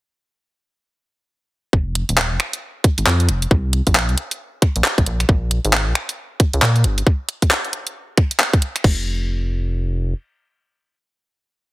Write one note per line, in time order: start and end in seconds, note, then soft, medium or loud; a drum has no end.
1.73 2.04 F1 medium
1.73 kick loud
1.95 closed hi-hat loud
2.09 2.33 D#1 loud
2.09 closed hi-hat medium
2.18 clap loud
2.31 2.38 F1 loud
2.40 finger snap medium
2.40 closed hi-hat loud
2.53 closed hi-hat medium
2.84 kick loud
2.84 closed hi-hat loud
2.98 3.04 G#1 medium
2.98 closed hi-hat medium
3.06 3.30 F2 loud
3.06 clap loud
3.20 closed hi-hat medium
3.29 3.47 F1 loud
3.29 closed hi-hat loud
3.42 closed hi-hat medium
3.51 3.81 C2 loud
3.51 kick loud
3.73 closed hi-hat loud
3.87 4.11 A#1 loud
3.87 kick medium
3.87 closed hi-hat medium
3.95 clap loud
4.09 4.16 C2 loud
4.09 closed hi-hat soft
4.18 closed hi-hat loud
4.31 closed hi-hat medium
4.62 finger snap soft
4.62 kick loud
4.62 closed hi-hat loud
4.76 4.82 A#1 medium
4.76 closed hi-hat medium
4.84 clap loud
4.98 5.04 C2 loud
4.98 kick loud
4.98 closed hi-hat medium
5.06 5.25 A#1 medium
5.06 closed hi-hat loud
5.20 finger snap soft
5.20 closed hi-hat medium
5.29 5.59 A#1 loud
5.29 kick loud
5.51 closed hi-hat loud
5.65 5.88 G#1 loud
5.65 closed hi-hat medium
5.73 clap loud
5.87 5.93 A#1 loud
5.95 finger snap medium
5.95 closed hi-hat loud
6.09 closed hi-hat medium
6.40 kick loud
6.40 closed hi-hat loud
6.53 6.60 C#2 medium
6.53 closed hi-hat medium
6.62 6.86 A#2 loud
6.62 clap loud
6.76 closed hi-hat soft
6.84 7.02 G1 loud
6.84 closed hi-hat loud
6.98 closed hi-hat medium
7.07 kick loud
7.29 closed hi-hat loud
7.42 kick medium
7.42 closed hi-hat medium
7.51 clap loud
7.65 closed hi-hat soft
7.73 closed hi-hat loud
7.87 closed hi-hat medium
8.17 finger snap soft
8.17 kick loud
8.17 closed hi-hat loud
8.31 closed hi-hat medium
8.40 clap loud
8.53 kick loud
8.53 closed hi-hat medium
8.62 closed hi-hat loud
8.76 finger snap soft
8.76 closed hi-hat medium
8.84 10.14 F1 loud
8.84 kick loud
8.84 crash medium